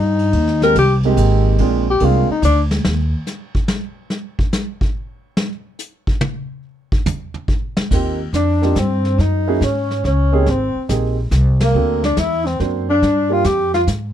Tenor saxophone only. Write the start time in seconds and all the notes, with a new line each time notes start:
Already playing: D#4
0.63 A#4
0.79 G4
1.90 G4
2.05 F4
2.31 D#4
2.45 D4
8.36 D4
8.79 C4
9.20 D#4
9.64 C#4
10.07 C#4
10.50 C4
11.63 A#3
12.05 D4
12.18 E4
12.46 C4
12.89 D4
13.33 F4
13.46 G4
13.74 F4